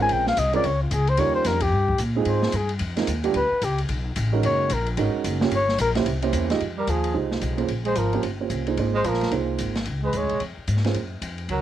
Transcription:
0.00 G#3 C4 C#4 F4 A#4 G#5
0.09 A#1 G5, ride
0.27 F5, snare
0.37 C2 D#5, hi-hat pedal, ride
0.53 G#3 C4 C#4 F4 A#4 D5, ride
0.64 C#2 C#5, ride
0.83 F4
0.91 C#2 G#4, hi-hat pedal, ride
1.07 C5, ride
1.17 D#2 G3 C#4 D#4 F4 A#4 C#5, ride
1.35 C5
1.45 F2 A#4, snare, hi-hat pedal, ride
1.60 G4, kick, ride
1.72 G2
1.88 kick
1.98 A#2, hi-hat pedal, ride
2.16 G#3 C4 D#4 F4 G#4
2.25 G#2 C5, ride
2.43 snare
2.52 G2, hi-hat pedal, ride
2.57 G#4
2.69 ride
2.79 F2, ride
2.96 G#3 C4 D#4 F4 A#4, snare, ride
3.07 D#2, hi-hat pedal, ride
3.24 G3 B3 D4 F4 G4, ride
3.34 D2 B4, ride
3.52 muted upright bass stroke
3.61 C#2 G4, hi-hat pedal, ride
3.78 ride
3.89 B1, ride
4.16 A1, hi-hat pedal, ride
4.32 G#3 C#4 D#4 F#4 A#4
4.43 F#1 C#5, ride
4.70 A#1 A#4, hi-hat pedal, ride
4.86 ride
4.97 G#1 G#3 C#4 D#4 F#4 A#4, ride
5.14 muted upright bass stroke
5.24 F#1, hi-hat pedal, ride
5.41 A#3 C#4 F4 G4 C#5, snare
5.51 G1, ride
5.55 C#5
5.69 snare
5.78 A#1 A#4, hi-hat pedal, ride
5.95 A#3 C#4 E4 G4 C5, snare, ride
6.06 C2, ride
6.22 A#3 C#4 E4 G4 C5, ride
6.33 E2, hi-hat pedal, ride
6.50 G#3 D#4 F4 G4 D#5, snare, ride
6.60 F2, ride
6.78 G3 A#4
6.87 D#2 F3 G#4, hi-hat pedal, ride
7.04 ride
7.14 C2 G#3 D#4 F4 G4 C5
7.32 snare
7.41 B1, hi-hat pedal, ride
7.57 A#3 C#4 F4 G#4 C5, ride
7.68 A#1, ride
7.85 G#3 C5, ride
7.95 G#1 F3 A#4, hi-hat pedal, ride
8.13 A#3 C#4 F4 G4 C5, ride
8.23 G1, ride
8.40 A#3 C#4 F4 G4 C5
8.50 C2, hi-hat pedal, ride
8.67 A#3 D#4 F4 G#4 C5, ride
8.77 G#1 A#3 D#4 F4 G#4 C5, ride
8.95 G#3 C5
9.04 A#1 F3, hi-hat pedal, ride
9.09 A#4
9.14 snare
9.21 snare, ride
9.31 C2 A#3 D#4 F4 G#4 C5, ride
9.58 G#1, hi-hat pedal, ride
9.75 snare, ride
9.85 C#2, ride
10.03 G#3 B4
10.13 D#2 G#3, hi-hat pedal, ride
10.18 C#5
10.22 C#2
10.29 B1, ride
10.40 F2, ride
10.58 muted upright bass stroke
10.68 G#2, hi-hat pedal, ride
10.77 snare
10.84 A#3 C#4 F4 G#4 C5, snare, ride
10.94 F#2, ride
11.21 F2, hi-hat pedal, ride
11.38 ride
11.48 C#2 F#3 A#4, ride

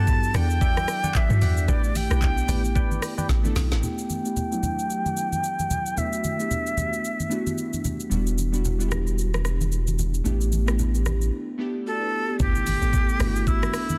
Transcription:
Already playing: G2 F#3 B3 D4 E4 F#4 G4 A5
0.00 A4
0.07 kick, low conga, shaker
0.23 shaker
0.33 E2 F#3 B3 D4 E4 G#4 D5 F#5 G5, cross-stick, open hi-hat, high conga, low conga, shaker
0.43 A4
0.50 shaker
0.61 D5 E5 G5, kick, shaker
0.77 cross-stick, high conga, shaker
0.88 cross-stick, open hi-hat, shaker
1.03 D5 F#5 G5, high conga, shaker
1.15 E5, kick, clap, shaker
1.29 G2 F#3 B3 D4 E4 F#4, mid tom, high conga, shaker
1.41 E2 D5 F#5 G5, open hi-hat, high conga, low conga, shaker
1.57 shaker
1.67 A1 A3 B3 D4 E4 G4 B4 D5 G5, kick, low conga, shaker
1.84 shaker
1.95 G5, open hi-hat, high conga, shaker
2.09 B1 A3 B3 D4 E4 G4 B4 D5 G5, cross-stick, shaker
2.22 kick, clap, low conga, shaker
2.38 shaker
2.47 A1 A3 B3 D4 E4 G4 B4 D5 G5, open hi-hat, high conga, low conga, shaker
2.65 shaker
2.75 B4 D5 G5, kick, shaker
2.91 high conga, shaker
3.02 cross-stick, open hi-hat, shaker
3.18 B4 D5 G5, high conga, shaker
3.29 A1, kick, snare, shaker
3.43 A3 B3 D4 E4 A4, high conga, shaker
3.56 B1, snare, open hi-hat, high conga, low conga, shaker
3.72 A1, snare, shaker
3.81 A3 B3 D4 E4 G4 G5, low conga, shaker
3.98 shaker
4.10 high conga, shaker
4.24 A3 B3 D4 E4 G4, shaker
4.36 low conga, shaker
4.51 F#3 A3 B3 D4 E4, shaker
4.63 high conga, low conga, shaker
4.79 shaker
4.90 shaker
5.06 high conga, shaker
5.17 shaker
5.32 high conga, shaker
5.44 shaker
5.59 high conga, shaker
5.71 high conga, low conga, shaker
5.86 shaker
5.95 A3 B3 D4 E4 F#4 E5, low conga, shaker
6.13 shaker
6.24 high conga, shaker
6.38 A3 B3 D4 E4 G4, shaker
6.51 low conga, shaker
6.67 shaker
6.77 high conga, low conga, shaker
6.93 shaker
7.05 shaker
7.20 high conga, shaker
7.29 A3 B3 D4 E4 F#4, shaker
7.47 high conga, shaker
7.58 shaker
7.73 high conga, shaker
7.85 high conga, low conga, shaker
8.00 shaker
8.10 E1 G3 B3 D4 E4 F#4, low conga, shaker
8.27 shaker
8.38 high conga, shaker
8.52 G3 B3 D4 E4 F#4, shaker
8.65 low conga, shaker
8.79 G3 B3 D4 E4 F#4, shaker
8.88 G4, cross-stick, high conga, low conga, shaker
9.07 shaker
9.19 shaker
9.34 cross-stick, high conga, shaker
9.45 cross-stick, shaker
9.61 high conga, shaker
9.72 shaker
9.87 high conga, shaker
9.99 high conga, low conga, shaker
10.14 shaker
10.24 A1 A3 B3 D4 E4 G4, low conga, shaker
10.41 shaker
10.52 high conga, shaker
10.66 A3 B3 D4 E4 G4, cross-stick, shaker
10.79 low conga, shaker
10.95 shaker
11.06 cross-stick, high conga, low conga, shaker
11.21 shaker
11.58 A3 B3 D4 E4 G4
11.86 F#4 A4 D5
12.01 D4 B4
12.29 B3 G4
12.38 G1 A3 B3 D4 E4 G4, kick, impact, low conga, shaker
12.55 shaker
12.67 open hi-hat, high conga, shaker
12.80 A1 A3 B3 D4 E4 A4, shaker
12.93 kick, low conga, shaker
13.09 shaker
13.19 G1 A3 B3 D4 E4 F#4, cross-stick, open hi-hat, high conga, low conga, shaker
13.36 shaker
13.47 E4, kick, shaker
13.63 cross-stick, high conga, shaker
13.74 cross-stick, open hi-hat, shaker
13.89 high conga, shaker

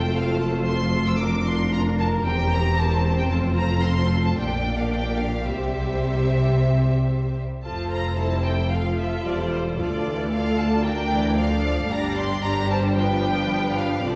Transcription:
Already playing: F1 F2 A3 F4 A4 C5 G5
0.16 F5
0.41 A5
0.67 C6
1.07 E6
1.19 D4 A#4 D6
1.45 C6
1.72 A#5
1.99 A5
2.26 E1 E2 C4 G4 C5 G5
2.52 A#5
2.78 A5
3.18 G5
3.30 F1 F2 F4 A4 A5
3.57 A#5
3.84 C6
4.25 A5
4.38 A#1 A#2 A#3 D4 G4 D5 G5
4.79 F5
4.92 G5
5.18 F5
5.46 C2 C3 G3 G4 C5 E5
7.64 F1 F2 F3 F4 A4 C5 A5
7.92 A#5
8.19 G3 E4 A5
8.45 G5
8.72 F3 F4 A4 F5
8.99 E5
9.26 E1 E2 G3 C5 D5
9.52 C5
9.78 D2 F3 F4 A4 D5
10.05 E3
10.31 D3 F4 D5 F5
10.57 A5
10.84 D3 D4 A#4 D5 G5
11.10 E3
11.36 F3 D4 A4 D5 F5
11.89 G1 G2 G3 D4 G4 D5 A#5
12.17 C6
12.42 G3 D4 G4 D5 A#5
12.69 C5 A5
12.96 F3 D4 G4 B4 G5
13.76 F5
14.04 C2 C3 F3 C4 F4 A4 D5

